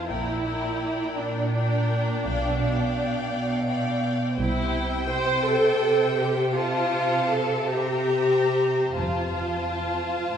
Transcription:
0.07 double bass section A#1, cello section A#2, viola section E4, violin section A#4 D5 G5
0.44 violin section A#4 D5 G5
1.17 cello section A#2, viola section D4
1.54 violin section A#4 D5 G5
2.24 double bass section B1, cello section B2, violin section D5 F5 G5
2.60 violin section D5 F5 G5
3.30 cello section B2
3.66 violin section D5 F5 G5
4.37 double bass section C2, cello section C3, viola section E4, violin section C5 G5
5.10 viola section C5
5.45 viola section A4
6.19 viola section G4
6.55 viola section F4, violin section C5 F5 A5
7.32 viola section A4
7.72 viola section G4, violin section C5 E5 A#5
8.96 double bass section F1, cello section F2, viola section F4, violin section C5 F5 A5
10.29 cello section A2

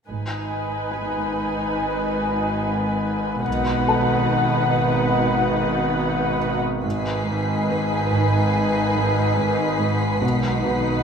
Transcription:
0.08 double bass section G#1, synth drone G#1, cello section G#2, viola section D#4 B4, violin section G#5
0.91 felt piano G#5
3.45 synth drone G#1, double bass section B1, cello section B2, viola section D#4 B4, violin section F#5
3.88 felt piano A4 A5
6.84 double bass section G#1, synth drone G#1, cello section G#2, viola section D#4, violin section B4 G#5 B6 C7
7.28 cello section G#2
7.69 cello section G#2, felt piano B4
8.12 cello section G#2
8.54 cello section G#3
8.97 cello section G#3
9.39 cello section G#2
9.81 cello section G#2
10.22 double bass section B1, synth drone B1, cello section B2, viola section D#4, violin section B4 F#5
10.66 cello section B2

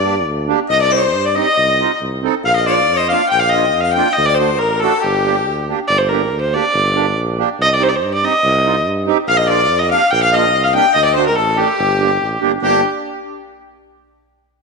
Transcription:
Already playing: tuba G2, violin D5, harmonica D5
0.04 accordion A#3 D4 G4
0.26 tuba D2
0.48 accordion A#3 D4 G4
0.69 tuba C2, harmonica D#5, violin D#5
0.80 harmonica D5, violin D5
0.91 accordion C4 D#4 G4, harmonica C5, violin C5
1.14 tuba G2
1.26 violin D5, harmonica D5
1.35 accordion C4 D#4 G4, harmonica D#5, violin D#5
1.57 tuba C2
1.80 accordion C4 D#4 F4
2.01 tuba C2
2.23 accordion C4 D#4 A4
2.44 tuba A#1, harmonica F5, violin F5
2.56 violin D#5
2.66 accordion A#3 D4 F4, violin D5, harmonica D5
2.88 tuba F2
2.97 violin D#5
3.09 accordion A#3 D4 F4, violin F5, harmonica F5
3.28 tuba A#1, violin G5, harmonica G5
3.39 violin F5, harmonica F5
3.50 accordion A#3, violin D#5, harmonica D#5
3.54 accordion D4 F4
3.74 tuba F2
3.81 violin F5, harmonica F5
3.93 accordion A#3 D4, violin G5, harmonica G5
3.97 accordion F4
4.13 violin D#5
4.17 tuba D2, harmonica D#5
4.25 violin D5, harmonica D5
4.35 violin C5
4.39 accordion A3 D4 F#4, harmonica C5
4.58 tuba A1, violin A#4, harmonica A#4
4.80 accordion A3 D4 F#4, violin A4, harmonica A4
5.01 tuba G1, violin G4, harmonica G4
5.24 accordion A#3 D4 G4
5.46 tuba D2
5.69 accordion A#3 D4 G4
5.88 tuba G1, violin D5
5.98 violin C5
6.09 accordion A#3 D4 G4, violin A#4
6.32 tuba D2
6.41 violin C5
6.53 accordion A#3 D4 G4, violin D5
6.74 tuba G1
6.95 accordion A#3 D4 G4
7.17 tuba A#1
7.38 accordion A#3 D4 G4
7.59 tuba C2, violin D#5
7.68 violin D#5
7.74 violin D5
7.79 accordion C4 D#4 G4, violin C5
7.89 violin D5
7.96 violin C5
8.02 tuba G2
8.14 violin D5
8.23 accordion C4 D#4 G4, violin D#5
8.44 tuba C2
8.64 accordion C4 D#4 F4
8.86 tuba G2
9.06 accordion C4 D#4 G4
9.28 tuba A#1, violin F5, harmonica F5
9.37 violin D#5, harmonica D#5
9.47 accordion A#3 D4 F4, violin D5, harmonica D5
9.70 tuba F2
9.79 violin D#5, harmonica D#5
9.91 accordion A#3 D4 G4, violin F5, harmonica F5
10.11 tuba A#1, violin G5, harmonica G5
10.22 harmonica F5, violin F5
10.32 accordion A#3 D4 F4, harmonica D#5, violin D#5
10.53 tuba C2
10.63 violin F5, harmonica F5
10.74 accordion A#3 D4 G4, violin G5, harmonica G5
10.94 tuba D2, violin D#5, harmonica D#5
11.05 violin D5
11.15 accordion A3 D4 F#4, violin C5, harmonica C5
11.26 violin A#4, harmonica A#4
11.36 tuba A1, violin A4, harmonica A4
11.57 accordion A3 D4 A4, violin G4, harmonica G4
11.79 tuba G1
11.99 accordion A#3 D4 G4
12.21 tuba A1
12.41 tuba G1, accordion A#3 D4 G4
12.62 tuba G1, accordion A#3 D4 G4, harmonica G4, violin G4

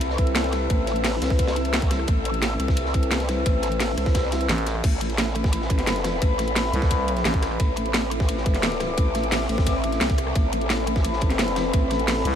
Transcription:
Already playing: wobble bass C2, brass ensemble C4 E4 A4 B4, ambient pad C4 A4 E5 E6
0.01 closed hi-hat, ride
0.10 snare
0.18 kick, closed hi-hat, ride
0.27 closed hi-hat
0.35 snare, closed hi-hat, ride
0.44 snare, closed hi-hat
0.52 cross-stick, snare, closed hi-hat, ride
0.70 wobble bass A1, kick, closed hi-hat, ride
0.87 snare, closed hi-hat, ride
0.96 closed hi-hat
1.04 snare, closed hi-hat, open hi-hat
1.22 wobble bass C2, brass ensemble C4 E4 A4 B4, snare, closed hi-hat, ride
1.30 kick
1.39 kick, closed hi-hat, ride
1.48 snare, ride
1.56 closed hi-hat
1.65 brass ensemble C4 E4 A4 B4, closed hi-hat, ride
1.73 snare, closed hi-hat, ride
1.82 kick, closed hi-hat
1.91 brass ensemble C4 E4 A4 B4, cross-stick, snare, closed hi-hat, ride
1.99 cross-stick
2.07 wobble bass A1, kick, closed hi-hat, ride
2.25 closed hi-hat, ride
2.34 closed hi-hat
2.42 snare, closed hi-hat, ride
2.60 wobble bass C2, brass ensemble C4 E4 A4 B4, cross-stick, closed hi-hat, ride
2.68 kick, snare
2.77 closed hi-hat, ride
2.86 snare
2.94 kick, closed hi-hat, ride
3.03 closed hi-hat
3.11 snare, closed hi-hat, ride
3.20 snare, closed hi-hat
3.29 cross-stick, snare, closed hi-hat, ride
3.46 wobble bass A1, kick, closed hi-hat, ride
3.63 cross-stick, snare, closed hi-hat, ride
3.72 closed hi-hat
3.80 snare, closed hi-hat, open hi-hat
3.97 wobble bass C2, brass ensemble C4 E4 A4 B4, cross-stick, closed hi-hat, ride
4.06 kick, snare
4.15 kick, snare, closed hi-hat, ride
4.24 snare
4.32 snare, closed hi-hat, ride
4.41 brass ensemble C4 E4 A4 B4, closed hi-hat
4.49 fm bass A1, snare, closed hi-hat, ride
4.58 closed hi-hat
4.66 cross-stick, snare, closed hi-hat, ride
4.75 cross-stick
4.84 wobble bass A1, ambient pad C4 A4 E5 B5, kick, closed hi-hat, crash, ride
5.01 closed hi-hat, ride
5.10 closed hi-hat
5.18 snare, closed hi-hat, ride
5.35 brass ensemble C4 E4 A4 B4, cross-stick, closed hi-hat, ride
5.44 kick, snare
5.52 closed hi-hat, ride
5.62 snare
5.70 kick, closed hi-hat, ride
5.79 snare, closed hi-hat
5.83 wobble bass G1
5.87 snare, closed hi-hat, ride
5.96 snare, closed hi-hat
6.04 wobble bass F1, cross-stick, snare, closed hi-hat, ride
6.22 wobble bass A1, kick, closed hi-hat, ride
6.39 cross-stick, snare, closed hi-hat, ride
6.48 closed hi-hat
6.56 snare, closed hi-hat, open hi-hat
6.73 fm bass C2, brass ensemble C4 E4 A4 B4, closed hi-hat, ride
6.82 kick, snare
6.91 kick, closed hi-hat, ride
7.08 closed hi-hat, ride
7.17 brass ensemble C4 E4 A4 B4, snare, closed hi-hat
7.25 fm bass A1, snare, closed hi-hat, ride
7.34 kick, closed hi-hat
7.42 brass ensemble C4 E4 A4 B4, cross-stick, snare, closed hi-hat, ride
7.51 cross-stick
7.60 wobble bass A1, ambient pad D6, kick, closed hi-hat, ride
7.76 closed hi-hat, ride
7.86 closed hi-hat
7.94 snare, closed hi-hat, ride
8.11 brass ensemble C4 E4 A4 B4, cross-stick, closed hi-hat, ride
8.20 kick, snare
8.28 closed hi-hat, ride
8.37 snare
8.46 kick, closed hi-hat, ride
8.55 snare, closed hi-hat
8.63 snare, closed hi-hat, ride
8.72 snare, closed hi-hat
8.80 cross-stick, snare, closed hi-hat, ride
8.97 wobble bass A1, kick, closed hi-hat, ride
9.15 cross-stick, snare, closed hi-hat, ride
9.23 closed hi-hat
9.31 snare, closed hi-hat, open hi-hat
9.49 wobble bass A1, brass ensemble C4 E4 A4 B4, closed hi-hat, ride
9.58 kick, snare
9.66 kick, closed hi-hat, ride
9.84 closed hi-hat, ride
9.92 snare, closed hi-hat
10.01 wobble bass C2, snare, closed hi-hat, ride
10.10 kick, closed hi-hat
10.18 cross-stick, closed hi-hat, ride
10.27 cross-stick
10.35 wobble bass A1, ambient pad B5, kick, closed hi-hat, ride
10.53 closed hi-hat, ride
10.61 closed hi-hat
10.70 snare, closed hi-hat, ride
10.87 brass ensemble C4 E4 A4 B4, cross-stick, closed hi-hat, ride
10.96 kick, snare
11.04 closed hi-hat, ride
11.13 snare
11.21 kick, closed hi-hat, ride
11.30 snare, closed hi-hat
11.35 wobble bass G1
11.39 snare, closed hi-hat, ride
11.48 snare, closed hi-hat
11.56 wobble bass F1, cross-stick, snare, closed hi-hat, ride
11.73 wobble bass A1, kick, closed hi-hat, ride
11.90 cross-stick, snare, closed hi-hat, ride
11.99 closed hi-hat
12.08 snare, closed hi-hat, open hi-hat
12.25 fm bass C2, brass ensemble C4 E4 A4 B4, closed hi-hat, ride

